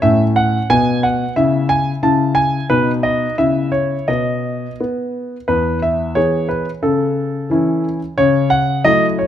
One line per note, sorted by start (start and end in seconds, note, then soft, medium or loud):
0.02 0.56 A2 medium
0.02 0.66 C#4 soft
0.02 0.22 E5 medium
0.36 0.66 F#5 medium
0.70 1.23 B2 medium
0.70 1.32 B3 soft
0.70 1.03 G#5 medium
1.03 1.33 F#5 medium
1.36 1.90 C#3 medium
1.36 1.99 E4 soft
1.36 1.66 E5 medium
1.69 1.89 G#5 medium
2.03 2.57 C#3 soft
2.03 2.66 E4 soft
2.03 2.37 A5 medium
2.35 2.66 G#5 medium
2.70 3.25 B2 soft
2.70 3.35 D#4 soft
2.70 2.90 B4 medium
3.03 3.35 D#5 medium
3.38 3.95 C#3 soft
3.38 4.05 E4 soft
3.38 3.70 E5 medium
3.72 4.08 C#5 medium
4.08 4.65 B2 soft
4.08 4.79 B3 soft
4.08 4.72 D#5 medium
4.81 5.36 B3 soft
5.48 6.14 E2 soft
5.48 5.79 B4 medium
5.82 6.16 E5 medium
6.15 6.64 E3 soft
6.15 6.64 B3 soft
6.15 6.64 G#4 soft
6.15 6.46 C#5 medium
6.49 6.69 B4 soft
6.83 7.48 C#3 soft
6.83 7.84 A4 medium
7.50 7.98 E3 soft
7.50 7.99 C#4 soft
7.50 7.99 E4 soft
8.18 8.83 C#3 medium
8.18 8.48 C#5 medium
8.50 8.81 F#5 medium
8.84 9.27 F#3 soft
8.84 9.27 A3 soft
8.84 9.27 E4 soft
8.84 9.05 D#5 medium
9.19 9.27 C#5 medium